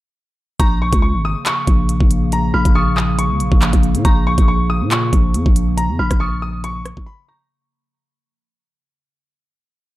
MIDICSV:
0, 0, Header, 1, 6, 480
1, 0, Start_track
1, 0, Tempo, 431655
1, 663, Time_signature, 4, 2, 24, 8
1, 11084, End_track
2, 0, Start_track
2, 0, Title_t, "Synth bell"
2, 0, Program_c, 0, 98
2, 662, Note_on_c, 0, 85, 115
2, 1114, Note_off_c, 0, 85, 0
2, 2824, Note_on_c, 0, 89, 84
2, 3051, Note_off_c, 0, 89, 0
2, 3064, Note_on_c, 0, 87, 79
2, 3514, Note_off_c, 0, 87, 0
2, 4502, Note_on_c, 0, 85, 113
2, 4954, Note_off_c, 0, 85, 0
2, 6662, Note_on_c, 0, 89, 84
2, 6890, Note_off_c, 0, 89, 0
2, 6902, Note_on_c, 0, 87, 75
2, 7353, Note_off_c, 0, 87, 0
2, 8102, Note_on_c, 0, 85, 77
2, 8331, Note_off_c, 0, 85, 0
2, 11084, End_track
3, 0, Start_track
3, 0, Title_t, "Grand piano"
3, 0, Program_c, 1, 0
3, 666, Note_on_c, 1, 82, 98
3, 858, Note_off_c, 1, 82, 0
3, 909, Note_on_c, 1, 85, 83
3, 1100, Note_off_c, 1, 85, 0
3, 1137, Note_on_c, 1, 85, 89
3, 1333, Note_off_c, 1, 85, 0
3, 1389, Note_on_c, 1, 87, 82
3, 1580, Note_off_c, 1, 87, 0
3, 1628, Note_on_c, 1, 85, 85
3, 2541, Note_off_c, 1, 85, 0
3, 2589, Note_on_c, 1, 82, 93
3, 2780, Note_off_c, 1, 82, 0
3, 2823, Note_on_c, 1, 83, 85
3, 3017, Note_off_c, 1, 83, 0
3, 3062, Note_on_c, 1, 85, 92
3, 3256, Note_off_c, 1, 85, 0
3, 3300, Note_on_c, 1, 87, 83
3, 3495, Note_off_c, 1, 87, 0
3, 3542, Note_on_c, 1, 85, 85
3, 4458, Note_off_c, 1, 85, 0
3, 4503, Note_on_c, 1, 82, 93
3, 4696, Note_off_c, 1, 82, 0
3, 4746, Note_on_c, 1, 85, 89
3, 4938, Note_off_c, 1, 85, 0
3, 4983, Note_on_c, 1, 85, 88
3, 5176, Note_off_c, 1, 85, 0
3, 5223, Note_on_c, 1, 87, 89
3, 5416, Note_off_c, 1, 87, 0
3, 5459, Note_on_c, 1, 85, 85
3, 6376, Note_off_c, 1, 85, 0
3, 6420, Note_on_c, 1, 82, 86
3, 6615, Note_off_c, 1, 82, 0
3, 6663, Note_on_c, 1, 83, 78
3, 6856, Note_off_c, 1, 83, 0
3, 6895, Note_on_c, 1, 85, 83
3, 7091, Note_off_c, 1, 85, 0
3, 7141, Note_on_c, 1, 87, 77
3, 7335, Note_off_c, 1, 87, 0
3, 7383, Note_on_c, 1, 85, 95
3, 7834, Note_off_c, 1, 85, 0
3, 7856, Note_on_c, 1, 83, 92
3, 8052, Note_off_c, 1, 83, 0
3, 8100, Note_on_c, 1, 82, 67
3, 8295, Note_off_c, 1, 82, 0
3, 11084, End_track
4, 0, Start_track
4, 0, Title_t, "Ambient pad"
4, 0, Program_c, 2, 92
4, 662, Note_on_c, 2, 58, 93
4, 663, Note_on_c, 2, 49, 81
4, 663, Note_on_c, 2, 53, 77
4, 4464, Note_off_c, 2, 53, 0
4, 4503, Note_on_c, 2, 53, 78
4, 8298, Note_off_c, 2, 49, 0
4, 8298, Note_off_c, 2, 58, 0
4, 8304, Note_off_c, 2, 53, 0
4, 11084, End_track
5, 0, Start_track
5, 0, Title_t, "808-style bass"
5, 0, Program_c, 3, 38
5, 663, Note_on_c, 3, 34, 114
5, 1015, Note_off_c, 3, 34, 0
5, 1030, Note_on_c, 3, 37, 110
5, 1271, Note_on_c, 3, 32, 100
5, 1287, Note_off_c, 3, 37, 0
5, 1498, Note_off_c, 3, 32, 0
5, 1862, Note_on_c, 3, 34, 106
5, 2215, Note_off_c, 3, 34, 0
5, 2230, Note_on_c, 3, 34, 106
5, 2799, Note_off_c, 3, 34, 0
5, 2822, Note_on_c, 3, 34, 107
5, 2945, Note_off_c, 3, 34, 0
5, 2950, Note_on_c, 3, 34, 106
5, 3670, Note_on_c, 3, 37, 100
5, 3686, Note_off_c, 3, 34, 0
5, 3782, Note_on_c, 3, 34, 100
5, 3799, Note_off_c, 3, 37, 0
5, 3903, Note_off_c, 3, 34, 0
5, 3911, Note_on_c, 3, 34, 101
5, 4141, Note_off_c, 3, 34, 0
5, 4151, Note_on_c, 3, 34, 110
5, 4390, Note_on_c, 3, 46, 99
5, 4406, Note_off_c, 3, 34, 0
5, 4497, Note_off_c, 3, 46, 0
5, 4503, Note_on_c, 3, 34, 114
5, 4855, Note_off_c, 3, 34, 0
5, 4870, Note_on_c, 3, 34, 109
5, 5350, Note_on_c, 3, 46, 95
5, 5367, Note_off_c, 3, 34, 0
5, 5685, Note_off_c, 3, 46, 0
5, 5703, Note_on_c, 3, 34, 104
5, 5942, Note_on_c, 3, 41, 100
5, 5959, Note_off_c, 3, 34, 0
5, 6063, Note_off_c, 3, 41, 0
5, 6070, Note_on_c, 3, 34, 107
5, 6549, Note_on_c, 3, 41, 98
5, 6566, Note_off_c, 3, 34, 0
5, 6657, Note_off_c, 3, 41, 0
5, 6663, Note_on_c, 3, 34, 107
5, 6785, Note_off_c, 3, 34, 0
5, 6790, Note_on_c, 3, 34, 102
5, 7712, Note_off_c, 3, 34, 0
5, 7751, Note_on_c, 3, 34, 103
5, 7859, Note_off_c, 3, 34, 0
5, 11084, End_track
6, 0, Start_track
6, 0, Title_t, "Drums"
6, 663, Note_on_c, 9, 36, 111
6, 663, Note_on_c, 9, 42, 94
6, 774, Note_off_c, 9, 36, 0
6, 774, Note_off_c, 9, 42, 0
6, 1029, Note_on_c, 9, 42, 81
6, 1030, Note_on_c, 9, 36, 98
6, 1140, Note_off_c, 9, 42, 0
6, 1141, Note_off_c, 9, 36, 0
6, 1622, Note_on_c, 9, 39, 123
6, 1622, Note_on_c, 9, 42, 86
6, 1733, Note_off_c, 9, 39, 0
6, 1733, Note_off_c, 9, 42, 0
6, 1862, Note_on_c, 9, 36, 85
6, 1862, Note_on_c, 9, 42, 69
6, 1973, Note_off_c, 9, 36, 0
6, 1973, Note_off_c, 9, 42, 0
6, 2102, Note_on_c, 9, 42, 87
6, 2214, Note_off_c, 9, 42, 0
6, 2230, Note_on_c, 9, 36, 93
6, 2341, Note_off_c, 9, 36, 0
6, 2343, Note_on_c, 9, 42, 92
6, 2454, Note_off_c, 9, 42, 0
6, 2583, Note_on_c, 9, 42, 91
6, 2694, Note_off_c, 9, 42, 0
6, 2950, Note_on_c, 9, 36, 99
6, 2950, Note_on_c, 9, 42, 78
6, 3061, Note_off_c, 9, 36, 0
6, 3061, Note_off_c, 9, 42, 0
6, 3303, Note_on_c, 9, 39, 69
6, 3414, Note_off_c, 9, 39, 0
6, 3543, Note_on_c, 9, 42, 91
6, 3654, Note_off_c, 9, 42, 0
6, 3783, Note_on_c, 9, 42, 73
6, 3894, Note_off_c, 9, 42, 0
6, 3911, Note_on_c, 9, 36, 104
6, 4022, Note_off_c, 9, 36, 0
6, 4022, Note_on_c, 9, 39, 126
6, 4023, Note_on_c, 9, 42, 83
6, 4133, Note_off_c, 9, 39, 0
6, 4134, Note_off_c, 9, 42, 0
6, 4150, Note_on_c, 9, 36, 94
6, 4150, Note_on_c, 9, 42, 83
6, 4261, Note_off_c, 9, 42, 0
6, 4262, Note_off_c, 9, 36, 0
6, 4263, Note_on_c, 9, 42, 51
6, 4374, Note_off_c, 9, 42, 0
6, 4390, Note_on_c, 9, 42, 88
6, 4501, Note_off_c, 9, 42, 0
6, 4502, Note_on_c, 9, 42, 94
6, 4503, Note_on_c, 9, 36, 120
6, 4613, Note_off_c, 9, 42, 0
6, 4614, Note_off_c, 9, 36, 0
6, 4870, Note_on_c, 9, 36, 100
6, 4870, Note_on_c, 9, 42, 78
6, 4981, Note_off_c, 9, 36, 0
6, 4981, Note_off_c, 9, 42, 0
6, 5462, Note_on_c, 9, 39, 122
6, 5462, Note_on_c, 9, 42, 91
6, 5573, Note_off_c, 9, 39, 0
6, 5573, Note_off_c, 9, 42, 0
6, 5702, Note_on_c, 9, 42, 72
6, 5703, Note_on_c, 9, 36, 86
6, 5814, Note_off_c, 9, 36, 0
6, 5814, Note_off_c, 9, 42, 0
6, 5942, Note_on_c, 9, 42, 85
6, 6054, Note_off_c, 9, 42, 0
6, 6070, Note_on_c, 9, 36, 96
6, 6181, Note_off_c, 9, 36, 0
6, 6182, Note_on_c, 9, 42, 91
6, 6294, Note_off_c, 9, 42, 0
6, 6423, Note_on_c, 9, 42, 93
6, 6534, Note_off_c, 9, 42, 0
6, 6790, Note_on_c, 9, 36, 96
6, 6790, Note_on_c, 9, 37, 70
6, 6790, Note_on_c, 9, 42, 78
6, 6901, Note_off_c, 9, 36, 0
6, 6901, Note_off_c, 9, 37, 0
6, 6901, Note_off_c, 9, 42, 0
6, 7383, Note_on_c, 9, 42, 90
6, 7494, Note_off_c, 9, 42, 0
6, 7623, Note_on_c, 9, 37, 88
6, 7623, Note_on_c, 9, 42, 71
6, 7734, Note_off_c, 9, 37, 0
6, 7734, Note_off_c, 9, 42, 0
6, 7751, Note_on_c, 9, 36, 104
6, 7862, Note_off_c, 9, 36, 0
6, 11084, End_track
0, 0, End_of_file